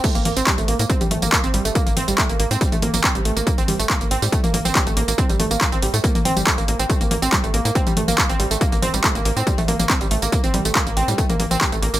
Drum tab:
CC |x---------------|----------------|----------------|----------------|
HH |xxoxxxoxxxoxxxox|xxoxxxoxxooxxxox|xxoxxxoxxxoxxxox|xxoxxxoxxooxxxox|
TB |xx-xxx-xxx-xxx-x|xx-xxx-xxx-x-x-x|xx-x-x-xxx-xxx-x|xx-xxx-xxx-xxx-x|
CP |----x-------x---|----x-------x---|----x-------x---|----x-------x---|
T2 |--o------ooo----|--o------ooo----|--o------ooo----|--o------ooo----|
BD |o---o---o---o---|o---o---o---o---|o---o---o---o---|o---o---o---o---|

CC |----------------|----------------|----------------|
HH |xxoxxxoxxxoxxxox|xxoxxxoxxooxxxox|xxoxxxoxxxoxxxox|
TB |xx-xxx-xxx-xxx-x|xx-xxx-xxx-xxx-x|xx-xxx-xxx-xxx-x|
CP |----x-------x---|----x-------x---|----x-------x---|
T2 |--o------ooo----|--o------ooo----|--o------ooo----|
BD |o---o---o---o---|o---o---o---o---|o---o---o---o---|